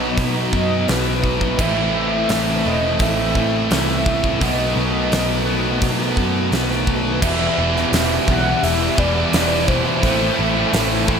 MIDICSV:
0, 0, Header, 1, 9, 480
1, 0, Start_track
1, 0, Tempo, 704225
1, 1082, Time_signature, 4, 2, 24, 8
1, 7632, End_track
2, 0, Start_track
2, 0, Title_t, "Soft synth lead"
2, 0, Program_c, 0, 80
2, 361, Note_on_c, 0, 75, 100
2, 603, Note_on_c, 0, 71, 94
2, 614, Note_off_c, 0, 75, 0
2, 1093, Note_on_c, 0, 76, 120
2, 1104, Note_off_c, 0, 71, 0
2, 1809, Note_off_c, 0, 76, 0
2, 1812, Note_on_c, 0, 75, 103
2, 2058, Note_on_c, 0, 76, 108
2, 2068, Note_off_c, 0, 75, 0
2, 2531, Note_off_c, 0, 76, 0
2, 2539, Note_on_c, 0, 76, 99
2, 3020, Note_on_c, 0, 75, 98
2, 3030, Note_off_c, 0, 76, 0
2, 4452, Note_off_c, 0, 75, 0
2, 4922, Note_on_c, 0, 76, 102
2, 5375, Note_off_c, 0, 76, 0
2, 5649, Note_on_c, 0, 78, 113
2, 5885, Note_on_c, 0, 76, 115
2, 5895, Note_off_c, 0, 78, 0
2, 6127, Note_on_c, 0, 74, 102
2, 6138, Note_off_c, 0, 76, 0
2, 6596, Note_on_c, 0, 72, 96
2, 6607, Note_off_c, 0, 74, 0
2, 7316, Note_off_c, 0, 72, 0
2, 7632, End_track
3, 0, Start_track
3, 0, Title_t, "String machine"
3, 0, Program_c, 1, 50
3, 0, Note_on_c, 1, 59, 79
3, 0, Note_on_c, 1, 63, 75
3, 0, Note_on_c, 1, 66, 71
3, 0, Note_on_c, 1, 75, 93
3, 1065, Note_off_c, 1, 59, 0
3, 1065, Note_off_c, 1, 75, 0
3, 1066, Note_off_c, 1, 63, 0
3, 1066, Note_off_c, 1, 66, 0
3, 1080, Note_on_c, 1, 57, 83
3, 1082, Note_on_c, 1, 71, 83
3, 1084, Note_on_c, 1, 64, 68
3, 1085, Note_on_c, 1, 60, 72
3, 2984, Note_off_c, 1, 57, 0
3, 2986, Note_off_c, 1, 60, 0
3, 2986, Note_off_c, 1, 64, 0
3, 3008, Note_on_c, 1, 63, 70
3, 3011, Note_on_c, 1, 57, 68
3, 3011, Note_on_c, 1, 66, 71
3, 4896, Note_off_c, 1, 71, 0
3, 4906, Note_off_c, 1, 63, 0
3, 4907, Note_off_c, 1, 57, 0
3, 4908, Note_off_c, 1, 66, 0
3, 4928, Note_on_c, 1, 67, 77
3, 4929, Note_on_c, 1, 83, 89
3, 4930, Note_on_c, 1, 76, 70
3, 6822, Note_off_c, 1, 67, 0
3, 6840, Note_on_c, 1, 72, 69
3, 6846, Note_on_c, 1, 69, 81
3, 7632, Note_off_c, 1, 69, 0
3, 7632, Note_off_c, 1, 72, 0
3, 7632, Note_off_c, 1, 76, 0
3, 7632, Note_off_c, 1, 83, 0
3, 7632, End_track
4, 0, Start_track
4, 0, Title_t, "Overdriven electric guitar"
4, 0, Program_c, 2, 29
4, 0, Note_on_c, 2, 47, 89
4, 0, Note_on_c, 2, 54, 95
4, 0, Note_on_c, 2, 59, 83
4, 0, Note_on_c, 2, 63, 106
4, 0, Note_on_c, 2, 66, 101
4, 1063, Note_off_c, 2, 47, 0
4, 1067, Note_off_c, 2, 54, 0
4, 1070, Note_off_c, 2, 63, 0
4, 1072, Note_off_c, 2, 66, 0
4, 1083, Note_on_c, 2, 45, 89
4, 1089, Note_off_c, 2, 59, 0
4, 1089, Note_on_c, 2, 52, 92
4, 1092, Note_on_c, 2, 57, 105
4, 1096, Note_on_c, 2, 60, 88
4, 1098, Note_on_c, 2, 64, 101
4, 2990, Note_off_c, 2, 45, 0
4, 2993, Note_off_c, 2, 52, 0
4, 2994, Note_off_c, 2, 57, 0
4, 2996, Note_off_c, 2, 60, 0
4, 2998, Note_off_c, 2, 64, 0
4, 3005, Note_on_c, 2, 47, 88
4, 3011, Note_on_c, 2, 51, 94
4, 3012, Note_on_c, 2, 57, 100
4, 3019, Note_on_c, 2, 59, 103
4, 3024, Note_on_c, 2, 66, 109
4, 4909, Note_off_c, 2, 47, 0
4, 4913, Note_off_c, 2, 51, 0
4, 4913, Note_off_c, 2, 57, 0
4, 4916, Note_off_c, 2, 59, 0
4, 4919, Note_off_c, 2, 66, 0
4, 4922, Note_on_c, 2, 40, 87
4, 4924, Note_on_c, 2, 47, 96
4, 4925, Note_on_c, 2, 52, 95
4, 4931, Note_on_c, 2, 55, 115
4, 4931, Note_on_c, 2, 59, 98
4, 4936, Note_on_c, 2, 64, 109
4, 5157, Note_off_c, 2, 52, 0
4, 5160, Note_on_c, 2, 52, 78
4, 5163, Note_off_c, 2, 55, 0
4, 5171, Note_off_c, 2, 59, 0
4, 5171, Note_on_c, 2, 55, 73
4, 5173, Note_on_c, 2, 59, 90
4, 5176, Note_off_c, 2, 64, 0
4, 5179, Note_on_c, 2, 64, 91
4, 5280, Note_off_c, 2, 64, 0
4, 5283, Note_on_c, 2, 64, 67
4, 5285, Note_off_c, 2, 55, 0
4, 5285, Note_off_c, 2, 59, 0
4, 5288, Note_on_c, 2, 59, 74
4, 5292, Note_off_c, 2, 52, 0
4, 5294, Note_on_c, 2, 55, 55
4, 5295, Note_on_c, 2, 52, 62
4, 5393, Note_off_c, 2, 40, 0
4, 5399, Note_off_c, 2, 47, 0
4, 5401, Note_on_c, 2, 40, 88
4, 5404, Note_off_c, 2, 55, 0
4, 5406, Note_off_c, 2, 52, 0
4, 5407, Note_on_c, 2, 47, 102
4, 5408, Note_on_c, 2, 52, 105
4, 5412, Note_off_c, 2, 59, 0
4, 5413, Note_off_c, 2, 64, 0
4, 5413, Note_on_c, 2, 55, 97
4, 5415, Note_on_c, 2, 59, 116
4, 5416, Note_on_c, 2, 64, 127
4, 5638, Note_off_c, 2, 52, 0
4, 5638, Note_off_c, 2, 55, 0
4, 5640, Note_on_c, 2, 52, 75
4, 5646, Note_on_c, 2, 55, 87
4, 5649, Note_off_c, 2, 59, 0
4, 5652, Note_on_c, 2, 59, 75
4, 5655, Note_off_c, 2, 64, 0
4, 5658, Note_on_c, 2, 64, 87
4, 5758, Note_off_c, 2, 64, 0
4, 5761, Note_on_c, 2, 64, 72
4, 5766, Note_off_c, 2, 55, 0
4, 5766, Note_off_c, 2, 59, 0
4, 5769, Note_on_c, 2, 59, 72
4, 5774, Note_off_c, 2, 52, 0
4, 5774, Note_on_c, 2, 55, 63
4, 5776, Note_on_c, 2, 52, 63
4, 5881, Note_off_c, 2, 40, 0
4, 5884, Note_off_c, 2, 47, 0
4, 6000, Note_off_c, 2, 64, 0
4, 6003, Note_off_c, 2, 55, 0
4, 6003, Note_on_c, 2, 64, 73
4, 6007, Note_off_c, 2, 59, 0
4, 6009, Note_on_c, 2, 59, 68
4, 6012, Note_on_c, 2, 55, 60
4, 6017, Note_off_c, 2, 52, 0
4, 6019, Note_on_c, 2, 52, 61
4, 6112, Note_off_c, 2, 52, 0
4, 6112, Note_off_c, 2, 55, 0
4, 6115, Note_on_c, 2, 52, 71
4, 6120, Note_on_c, 2, 55, 84
4, 6123, Note_off_c, 2, 59, 0
4, 6126, Note_on_c, 2, 59, 90
4, 6129, Note_off_c, 2, 64, 0
4, 6132, Note_on_c, 2, 64, 89
4, 6234, Note_off_c, 2, 64, 0
4, 6235, Note_off_c, 2, 55, 0
4, 6236, Note_on_c, 2, 64, 76
4, 6237, Note_off_c, 2, 59, 0
4, 6239, Note_on_c, 2, 59, 76
4, 6244, Note_on_c, 2, 55, 71
4, 6245, Note_off_c, 2, 52, 0
4, 6247, Note_on_c, 2, 52, 67
4, 6350, Note_off_c, 2, 52, 0
4, 6350, Note_off_c, 2, 55, 0
4, 6350, Note_on_c, 2, 40, 98
4, 6353, Note_on_c, 2, 52, 103
4, 6355, Note_on_c, 2, 47, 105
4, 6358, Note_on_c, 2, 55, 113
4, 6360, Note_off_c, 2, 59, 0
4, 6362, Note_on_c, 2, 59, 111
4, 6363, Note_off_c, 2, 64, 0
4, 6366, Note_on_c, 2, 64, 107
4, 6469, Note_off_c, 2, 64, 0
4, 6472, Note_on_c, 2, 64, 74
4, 6477, Note_off_c, 2, 55, 0
4, 6477, Note_off_c, 2, 59, 0
4, 6480, Note_on_c, 2, 59, 69
4, 6483, Note_off_c, 2, 52, 0
4, 6485, Note_on_c, 2, 55, 71
4, 6486, Note_on_c, 2, 52, 62
4, 6710, Note_off_c, 2, 64, 0
4, 6713, Note_on_c, 2, 64, 73
4, 6714, Note_off_c, 2, 40, 0
4, 6714, Note_off_c, 2, 55, 0
4, 6717, Note_off_c, 2, 47, 0
4, 6717, Note_off_c, 2, 59, 0
4, 6720, Note_on_c, 2, 59, 75
4, 6722, Note_on_c, 2, 55, 71
4, 6727, Note_off_c, 2, 52, 0
4, 6730, Note_on_c, 2, 52, 65
4, 6826, Note_off_c, 2, 55, 0
4, 6827, Note_on_c, 2, 45, 99
4, 6830, Note_off_c, 2, 52, 0
4, 6833, Note_on_c, 2, 52, 109
4, 6833, Note_on_c, 2, 57, 101
4, 6837, Note_off_c, 2, 59, 0
4, 6839, Note_on_c, 2, 60, 114
4, 6840, Note_off_c, 2, 64, 0
4, 6842, Note_on_c, 2, 64, 97
4, 7062, Note_off_c, 2, 52, 0
4, 7063, Note_off_c, 2, 57, 0
4, 7064, Note_on_c, 2, 52, 80
4, 7069, Note_off_c, 2, 60, 0
4, 7071, Note_on_c, 2, 57, 77
4, 7077, Note_on_c, 2, 60, 89
4, 7078, Note_off_c, 2, 64, 0
4, 7081, Note_on_c, 2, 64, 92
4, 7184, Note_off_c, 2, 64, 0
4, 7187, Note_off_c, 2, 60, 0
4, 7187, Note_on_c, 2, 64, 73
4, 7193, Note_off_c, 2, 57, 0
4, 7195, Note_on_c, 2, 60, 66
4, 7202, Note_on_c, 2, 57, 64
4, 7302, Note_off_c, 2, 45, 0
4, 7308, Note_off_c, 2, 57, 0
4, 7309, Note_off_c, 2, 52, 0
4, 7310, Note_on_c, 2, 45, 106
4, 7312, Note_off_c, 2, 60, 0
4, 7312, Note_on_c, 2, 52, 105
4, 7317, Note_on_c, 2, 57, 109
4, 7320, Note_off_c, 2, 64, 0
4, 7320, Note_on_c, 2, 60, 112
4, 7323, Note_on_c, 2, 64, 117
4, 7545, Note_off_c, 2, 52, 0
4, 7547, Note_off_c, 2, 57, 0
4, 7548, Note_on_c, 2, 52, 75
4, 7551, Note_off_c, 2, 60, 0
4, 7555, Note_on_c, 2, 57, 74
4, 7559, Note_on_c, 2, 60, 77
4, 7562, Note_off_c, 2, 64, 0
4, 7565, Note_on_c, 2, 64, 82
4, 7632, Note_off_c, 2, 45, 0
4, 7632, Note_off_c, 2, 52, 0
4, 7632, Note_off_c, 2, 57, 0
4, 7632, Note_off_c, 2, 60, 0
4, 7632, Note_off_c, 2, 64, 0
4, 7632, End_track
5, 0, Start_track
5, 0, Title_t, "Distorted electric guitar"
5, 0, Program_c, 3, 30
5, 0, Note_on_c, 3, 47, 72
5, 0, Note_on_c, 3, 54, 64
5, 0, Note_on_c, 3, 59, 74
5, 118, Note_off_c, 3, 47, 0
5, 352, Note_off_c, 3, 59, 0
5, 355, Note_on_c, 3, 59, 71
5, 370, Note_off_c, 3, 54, 0
5, 378, Note_on_c, 3, 54, 68
5, 592, Note_on_c, 3, 47, 74
5, 596, Note_off_c, 3, 54, 0
5, 604, Note_on_c, 3, 54, 69
5, 609, Note_off_c, 3, 59, 0
5, 612, Note_on_c, 3, 59, 77
5, 1063, Note_off_c, 3, 47, 0
5, 1069, Note_off_c, 3, 54, 0
5, 1073, Note_on_c, 3, 45, 83
5, 1085, Note_on_c, 3, 52, 83
5, 1089, Note_off_c, 3, 59, 0
5, 1092, Note_on_c, 3, 57, 94
5, 1315, Note_off_c, 3, 57, 0
5, 1318, Note_on_c, 3, 57, 73
5, 1331, Note_off_c, 3, 52, 0
5, 1339, Note_on_c, 3, 52, 53
5, 1545, Note_off_c, 3, 45, 0
5, 1553, Note_on_c, 3, 45, 75
5, 1557, Note_off_c, 3, 52, 0
5, 1565, Note_on_c, 3, 52, 72
5, 1572, Note_off_c, 3, 57, 0
5, 1574, Note_on_c, 3, 57, 83
5, 1791, Note_off_c, 3, 57, 0
5, 1793, Note_on_c, 3, 57, 71
5, 1808, Note_off_c, 3, 52, 0
5, 1816, Note_on_c, 3, 52, 66
5, 2038, Note_off_c, 3, 45, 0
5, 2271, Note_off_c, 3, 57, 0
5, 2279, Note_on_c, 3, 57, 77
5, 2293, Note_off_c, 3, 52, 0
5, 2301, Note_on_c, 3, 52, 61
5, 2516, Note_on_c, 3, 45, 80
5, 2521, Note_off_c, 3, 52, 0
5, 2529, Note_on_c, 3, 52, 79
5, 2532, Note_off_c, 3, 57, 0
5, 2540, Note_on_c, 3, 57, 88
5, 2986, Note_off_c, 3, 45, 0
5, 2992, Note_off_c, 3, 52, 0
5, 2998, Note_off_c, 3, 57, 0
5, 3003, Note_on_c, 3, 47, 94
5, 3014, Note_on_c, 3, 54, 90
5, 3022, Note_on_c, 3, 59, 90
5, 3233, Note_off_c, 3, 59, 0
5, 3242, Note_on_c, 3, 59, 61
5, 3254, Note_off_c, 3, 54, 0
5, 3262, Note_on_c, 3, 54, 61
5, 3474, Note_off_c, 3, 47, 0
5, 3482, Note_on_c, 3, 47, 68
5, 3484, Note_off_c, 3, 54, 0
5, 3492, Note_on_c, 3, 54, 67
5, 3493, Note_off_c, 3, 59, 0
5, 3502, Note_on_c, 3, 59, 71
5, 3713, Note_off_c, 3, 59, 0
5, 3721, Note_on_c, 3, 59, 74
5, 3736, Note_off_c, 3, 54, 0
5, 3745, Note_on_c, 3, 54, 60
5, 3963, Note_off_c, 3, 47, 0
5, 4200, Note_off_c, 3, 59, 0
5, 4208, Note_on_c, 3, 59, 78
5, 4220, Note_off_c, 3, 54, 0
5, 4229, Note_on_c, 3, 54, 57
5, 4442, Note_on_c, 3, 47, 73
5, 4446, Note_off_c, 3, 54, 0
5, 4454, Note_on_c, 3, 54, 73
5, 4455, Note_off_c, 3, 59, 0
5, 4464, Note_on_c, 3, 59, 77
5, 4908, Note_off_c, 3, 47, 0
5, 4914, Note_off_c, 3, 54, 0
5, 4919, Note_off_c, 3, 59, 0
5, 4923, Note_on_c, 3, 40, 80
5, 4931, Note_on_c, 3, 47, 89
5, 4940, Note_on_c, 3, 52, 93
5, 5047, Note_off_c, 3, 47, 0
5, 5048, Note_off_c, 3, 52, 0
5, 5282, Note_off_c, 3, 40, 0
5, 5283, Note_on_c, 3, 52, 75
5, 5302, Note_on_c, 3, 47, 63
5, 5402, Note_on_c, 3, 40, 85
5, 5407, Note_off_c, 3, 47, 0
5, 5416, Note_on_c, 3, 47, 89
5, 5420, Note_off_c, 3, 52, 0
5, 5423, Note_on_c, 3, 52, 102
5, 5633, Note_off_c, 3, 40, 0
5, 5642, Note_on_c, 3, 40, 81
5, 5645, Note_off_c, 3, 47, 0
5, 5653, Note_on_c, 3, 47, 97
5, 5660, Note_off_c, 3, 52, 0
5, 5663, Note_on_c, 3, 52, 88
5, 5871, Note_off_c, 3, 40, 0
5, 5879, Note_on_c, 3, 40, 86
5, 5884, Note_off_c, 3, 47, 0
5, 5892, Note_on_c, 3, 47, 82
5, 5896, Note_off_c, 3, 52, 0
5, 5899, Note_on_c, 3, 52, 95
5, 6111, Note_off_c, 3, 40, 0
5, 6120, Note_on_c, 3, 40, 78
5, 6125, Note_off_c, 3, 47, 0
5, 6133, Note_on_c, 3, 47, 88
5, 6139, Note_off_c, 3, 52, 0
5, 6141, Note_on_c, 3, 52, 96
5, 6237, Note_off_c, 3, 52, 0
5, 6239, Note_off_c, 3, 47, 0
5, 6347, Note_off_c, 3, 40, 0
5, 6356, Note_on_c, 3, 40, 93
5, 6368, Note_on_c, 3, 47, 93
5, 6377, Note_on_c, 3, 52, 112
5, 6584, Note_off_c, 3, 40, 0
5, 6592, Note_on_c, 3, 40, 68
5, 6597, Note_off_c, 3, 47, 0
5, 6605, Note_on_c, 3, 47, 80
5, 6613, Note_off_c, 3, 52, 0
5, 6616, Note_on_c, 3, 52, 76
5, 6712, Note_off_c, 3, 52, 0
5, 6715, Note_on_c, 3, 52, 71
5, 6727, Note_off_c, 3, 47, 0
5, 6736, Note_on_c, 3, 47, 56
5, 6821, Note_off_c, 3, 40, 0
5, 6830, Note_off_c, 3, 47, 0
5, 6833, Note_on_c, 3, 45, 77
5, 6840, Note_off_c, 3, 52, 0
5, 6842, Note_on_c, 3, 52, 93
5, 6853, Note_on_c, 3, 57, 102
5, 6951, Note_off_c, 3, 57, 0
5, 6961, Note_off_c, 3, 52, 0
5, 7193, Note_on_c, 3, 57, 69
5, 7195, Note_off_c, 3, 45, 0
5, 7216, Note_on_c, 3, 52, 60
5, 7311, Note_on_c, 3, 45, 87
5, 7323, Note_off_c, 3, 52, 0
5, 7325, Note_off_c, 3, 57, 0
5, 7326, Note_on_c, 3, 52, 96
5, 7333, Note_on_c, 3, 57, 99
5, 7543, Note_off_c, 3, 45, 0
5, 7551, Note_on_c, 3, 45, 82
5, 7560, Note_off_c, 3, 52, 0
5, 7563, Note_on_c, 3, 52, 93
5, 7566, Note_off_c, 3, 57, 0
5, 7574, Note_on_c, 3, 57, 97
5, 7632, Note_off_c, 3, 45, 0
5, 7632, Note_off_c, 3, 52, 0
5, 7632, Note_off_c, 3, 57, 0
5, 7632, End_track
6, 0, Start_track
6, 0, Title_t, "Distorted electric guitar"
6, 0, Program_c, 4, 30
6, 0, Note_on_c, 4, 47, 75
6, 1071, Note_off_c, 4, 47, 0
6, 1817, Note_on_c, 4, 45, 76
6, 2992, Note_off_c, 4, 45, 0
6, 3744, Note_on_c, 4, 47, 70
6, 4919, Note_off_c, 4, 47, 0
6, 7632, End_track
7, 0, Start_track
7, 0, Title_t, "Picked electric bass"
7, 0, Program_c, 5, 34
7, 0, Note_on_c, 5, 35, 104
7, 93, Note_off_c, 5, 35, 0
7, 122, Note_on_c, 5, 47, 89
7, 343, Note_off_c, 5, 47, 0
7, 361, Note_on_c, 5, 42, 86
7, 583, Note_off_c, 5, 42, 0
7, 608, Note_on_c, 5, 35, 97
7, 1058, Note_off_c, 5, 35, 0
7, 1084, Note_on_c, 5, 33, 89
7, 1536, Note_off_c, 5, 33, 0
7, 1567, Note_on_c, 5, 33, 96
7, 1787, Note_off_c, 5, 33, 0
7, 1812, Note_on_c, 5, 28, 92
7, 2030, Note_off_c, 5, 28, 0
7, 2045, Note_on_c, 5, 33, 96
7, 2266, Note_off_c, 5, 33, 0
7, 2284, Note_on_c, 5, 33, 84
7, 2506, Note_off_c, 5, 33, 0
7, 2531, Note_on_c, 5, 36, 102
7, 2980, Note_off_c, 5, 36, 0
7, 3008, Note_on_c, 5, 35, 94
7, 3228, Note_off_c, 5, 35, 0
7, 3245, Note_on_c, 5, 35, 88
7, 3466, Note_off_c, 5, 35, 0
7, 3490, Note_on_c, 5, 35, 98
7, 3940, Note_off_c, 5, 35, 0
7, 3964, Note_on_c, 5, 47, 91
7, 4185, Note_off_c, 5, 47, 0
7, 4209, Note_on_c, 5, 42, 83
7, 4428, Note_off_c, 5, 42, 0
7, 4444, Note_on_c, 5, 35, 100
7, 4924, Note_on_c, 5, 28, 90
7, 4934, Note_off_c, 5, 35, 0
7, 5094, Note_off_c, 5, 28, 0
7, 5168, Note_on_c, 5, 28, 93
7, 5337, Note_off_c, 5, 28, 0
7, 5402, Note_on_c, 5, 28, 90
7, 5573, Note_off_c, 5, 28, 0
7, 5647, Note_on_c, 5, 35, 81
7, 5816, Note_off_c, 5, 35, 0
7, 5883, Note_on_c, 5, 28, 102
7, 6053, Note_off_c, 5, 28, 0
7, 6124, Note_on_c, 5, 28, 96
7, 6294, Note_off_c, 5, 28, 0
7, 6365, Note_on_c, 5, 28, 95
7, 6704, Note_off_c, 5, 28, 0
7, 6838, Note_on_c, 5, 33, 83
7, 7009, Note_off_c, 5, 33, 0
7, 7083, Note_on_c, 5, 33, 99
7, 7251, Note_off_c, 5, 33, 0
7, 7317, Note_on_c, 5, 33, 95
7, 7632, Note_off_c, 5, 33, 0
7, 7632, End_track
8, 0, Start_track
8, 0, Title_t, "Muted distorted electric guitar strokes"
8, 5050, Note_on_c, 9, 29, 48
8, 5118, Note_off_c, 9, 29, 0
8, 6240, Note_on_c, 9, 29, 53
8, 6308, Note_off_c, 9, 29, 0
8, 6959, Note_on_c, 9, 29, 52
8, 7027, Note_off_c, 9, 29, 0
8, 7632, End_track
9, 0, Start_track
9, 0, Title_t, "Drums"
9, 119, Note_on_c, 9, 46, 49
9, 120, Note_on_c, 9, 36, 93
9, 187, Note_off_c, 9, 46, 0
9, 188, Note_off_c, 9, 36, 0
9, 361, Note_on_c, 9, 36, 73
9, 429, Note_off_c, 9, 36, 0
9, 601, Note_on_c, 9, 46, 55
9, 609, Note_on_c, 9, 38, 117
9, 670, Note_off_c, 9, 46, 0
9, 677, Note_off_c, 9, 38, 0
9, 842, Note_on_c, 9, 36, 86
9, 910, Note_off_c, 9, 36, 0
9, 962, Note_on_c, 9, 36, 81
9, 1030, Note_off_c, 9, 36, 0
9, 1082, Note_on_c, 9, 36, 103
9, 1084, Note_on_c, 9, 49, 83
9, 1151, Note_off_c, 9, 36, 0
9, 1152, Note_off_c, 9, 49, 0
9, 1561, Note_on_c, 9, 46, 63
9, 1569, Note_on_c, 9, 38, 120
9, 1630, Note_off_c, 9, 46, 0
9, 1637, Note_off_c, 9, 38, 0
9, 2041, Note_on_c, 9, 46, 60
9, 2045, Note_on_c, 9, 36, 109
9, 2109, Note_off_c, 9, 46, 0
9, 2113, Note_off_c, 9, 36, 0
9, 2285, Note_on_c, 9, 36, 75
9, 2353, Note_off_c, 9, 36, 0
9, 2526, Note_on_c, 9, 46, 61
9, 2534, Note_on_c, 9, 38, 121
9, 2595, Note_off_c, 9, 46, 0
9, 2602, Note_off_c, 9, 38, 0
9, 2768, Note_on_c, 9, 36, 89
9, 2836, Note_off_c, 9, 36, 0
9, 2888, Note_on_c, 9, 36, 80
9, 2957, Note_off_c, 9, 36, 0
9, 3009, Note_on_c, 9, 36, 92
9, 3011, Note_on_c, 9, 46, 55
9, 3077, Note_off_c, 9, 36, 0
9, 3079, Note_off_c, 9, 46, 0
9, 3489, Note_on_c, 9, 46, 65
9, 3497, Note_on_c, 9, 38, 107
9, 3558, Note_off_c, 9, 46, 0
9, 3565, Note_off_c, 9, 38, 0
9, 3964, Note_on_c, 9, 46, 58
9, 3966, Note_on_c, 9, 36, 109
9, 4032, Note_off_c, 9, 46, 0
9, 4034, Note_off_c, 9, 36, 0
9, 4205, Note_on_c, 9, 36, 74
9, 4274, Note_off_c, 9, 36, 0
9, 4446, Note_on_c, 9, 46, 51
9, 4453, Note_on_c, 9, 38, 105
9, 4514, Note_off_c, 9, 46, 0
9, 4522, Note_off_c, 9, 38, 0
9, 4574, Note_on_c, 9, 38, 31
9, 4643, Note_off_c, 9, 38, 0
9, 4684, Note_on_c, 9, 36, 84
9, 4752, Note_off_c, 9, 36, 0
9, 4924, Note_on_c, 9, 36, 110
9, 4925, Note_on_c, 9, 49, 105
9, 4992, Note_off_c, 9, 36, 0
9, 4993, Note_off_c, 9, 49, 0
9, 5293, Note_on_c, 9, 38, 36
9, 5361, Note_off_c, 9, 38, 0
9, 5405, Note_on_c, 9, 46, 68
9, 5412, Note_on_c, 9, 38, 111
9, 5473, Note_off_c, 9, 46, 0
9, 5480, Note_off_c, 9, 38, 0
9, 5643, Note_on_c, 9, 36, 85
9, 5711, Note_off_c, 9, 36, 0
9, 5886, Note_on_c, 9, 46, 61
9, 5954, Note_off_c, 9, 46, 0
9, 6122, Note_on_c, 9, 36, 95
9, 6190, Note_off_c, 9, 36, 0
9, 6360, Note_on_c, 9, 46, 66
9, 6368, Note_on_c, 9, 38, 117
9, 6429, Note_off_c, 9, 46, 0
9, 6436, Note_off_c, 9, 38, 0
9, 6599, Note_on_c, 9, 36, 85
9, 6667, Note_off_c, 9, 36, 0
9, 6838, Note_on_c, 9, 36, 97
9, 6838, Note_on_c, 9, 46, 57
9, 6906, Note_off_c, 9, 36, 0
9, 6906, Note_off_c, 9, 46, 0
9, 7316, Note_on_c, 9, 46, 70
9, 7324, Note_on_c, 9, 38, 122
9, 7384, Note_off_c, 9, 46, 0
9, 7392, Note_off_c, 9, 38, 0
9, 7554, Note_on_c, 9, 36, 93
9, 7622, Note_off_c, 9, 36, 0
9, 7632, End_track
0, 0, End_of_file